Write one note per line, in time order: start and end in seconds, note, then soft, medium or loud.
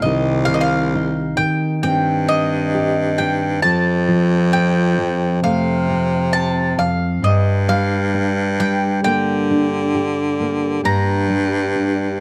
0.02 1.51 C2 medium
0.02 0.48 C3 medium
0.02 0.46 D#3 soft
0.02 1.83 C4 soft
0.02 0.93 D#4 medium
0.02 0.49 D#5 medium
0.06 2.73 G4 medium
0.45 1.37 D#3 medium
0.45 0.53 F5 medium
0.54 0.61 D#5 medium
0.61 1.37 F5 medium
0.95 2.28 D#4 medium
1.37 3.63 D#3 medium
1.37 1.82 G5 medium
1.81 3.58 G2 medium
1.81 3.18 C4 medium
1.81 2.29 G5 medium
2.28 3.58 D#4 soft
2.28 3.21 D#5 medium
2.75 3.58 G4 medium
3.18 3.58 C4 medium
3.18 3.62 G5 medium
3.62 5.38 F2 loud
3.62 6.76 F2 medium
3.62 4.53 A5 medium
4.08 4.97 F3 medium
4.53 5.88 C4 medium
4.53 5.43 G5 medium
4.98 7.18 F3 medium
5.42 6.92 C3 medium
5.42 7.18 A3 medium
5.42 6.33 F5 medium
5.89 7.24 C4 medium
6.33 6.78 A5 medium
6.78 7.22 F2 medium
6.78 7.25 F5 medium
7.22 10.78 G2 medium
7.22 8.99 G2 medium
7.22 7.70 D#5 medium
7.69 8.59 G3 medium
7.69 8.60 F5 medium
8.14 9.49 D4 medium
8.60 11.29 G3 medium
8.60 9.01 G5 medium
9.03 10.79 D3 medium
9.03 10.39 A#3 medium
9.03 10.85 G5 medium
9.51 10.79 D4 medium
9.95 12.20 G4 medium
10.41 10.79 A#3 medium
10.83 12.20 G2 medium
10.83 12.20 A#5 medium
11.30 12.19 G3 medium
11.76 12.20 D4 medium